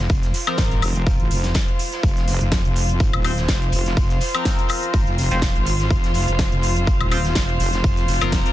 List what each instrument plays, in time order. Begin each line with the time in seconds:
Already playing: string section F4 C5 F5
0.09 wobble bass F1, kick, closed hi-hat
0.23 snare, closed hi-hat
0.33 snare, closed hi-hat, open hi-hat
0.47 synth stab F3 C4 A#4, closed hi-hat, high woodblock
0.57 wobble bass G#1, kick, snare, closed hi-hat
0.71 closed hi-hat
0.82 wobble bass F1, closed hi-hat, open hi-hat, high woodblock
0.96 closed hi-hat
1.07 kick, closed hi-hat
1.20 wobble bass G#1, closed hi-hat
1.31 wobble bass F1, closed hi-hat, open hi-hat
1.44 snare, closed hi-hat
1.54 kick, snare, closed hi-hat
1.68 closed hi-hat
1.79 closed hi-hat, open hi-hat
1.92 snare, closed hi-hat
2.03 wobble bass F1, kick, closed hi-hat
2.17 snare, closed hi-hat
2.28 snare, closed hi-hat, open hi-hat
2.41 wobble bass F1, closed hi-hat
2.52 kick, snare, closed hi-hat
2.65 wobble bass F1, closed hi-hat
2.76 closed hi-hat, open hi-hat
2.89 closed hi-hat
3.00 wobble bass G#1, kick, closed hi-hat
3.13 wobble bass D#1, closed hi-hat, high woodblock
3.24 synth stab F3 C4 C5, closed hi-hat, open hi-hat, high woodblock
3.37 snare, closed hi-hat
3.48 wobble bass F1, kick, snare, closed hi-hat
3.62 closed hi-hat
3.72 wobble bass F1, closed hi-hat, open hi-hat
3.86 snare, closed hi-hat
3.97 wobble bass F1, kick, closed hi-hat
4.10 snare, closed hi-hat
4.21 snare, closed hi-hat, open hi-hat
4.34 synth stab F3 C4 A#4, closed hi-hat, high woodblock
4.45 kick, snare, closed hi-hat
4.59 closed hi-hat
4.69 closed hi-hat, open hi-hat, high woodblock
4.83 closed hi-hat
4.94 wobble bass G#1, kick, closed hi-hat
5.07 wobble bass F1, closed hi-hat
5.18 closed hi-hat, open hi-hat
5.31 wobble bass F1, synth stab F3 C4 C5, snare, closed hi-hat
5.42 kick, snare, closed hi-hat
5.56 wobble bass G#1, closed hi-hat
5.66 closed hi-hat, open hi-hat
5.80 snare, closed hi-hat
5.90 wobble bass F1, kick, closed hi-hat
6.04 snare, closed hi-hat
6.14 snare, closed hi-hat, open hi-hat
6.28 wobble bass F1, closed hi-hat
6.39 kick, snare, closed hi-hat
6.52 wobble bass F1, closed hi-hat
6.63 closed hi-hat, open hi-hat
6.76 closed hi-hat
6.87 wobble bass G#1, kick, closed hi-hat
7.00 wobble bass D#1, closed hi-hat, high woodblock
7.12 synth stab F3 C4 C5, closed hi-hat, open hi-hat, high woodblock
7.25 snare, closed hi-hat
7.35 wobble bass F1, kick, snare, closed hi-hat
7.49 closed hi-hat
7.60 wobble bass F1, closed hi-hat, open hi-hat
7.73 snare, closed hi-hat
7.84 wobble bass F1, kick, closed hi-hat
7.97 snare, closed hi-hat
8.08 wobble bass F1, snare, closed hi-hat, open hi-hat
8.21 wobble bass F1, synth stab F3 C4 A#4, closed hi-hat, high woodblock
8.32 kick, snare, closed hi-hat
8.46 closed hi-hat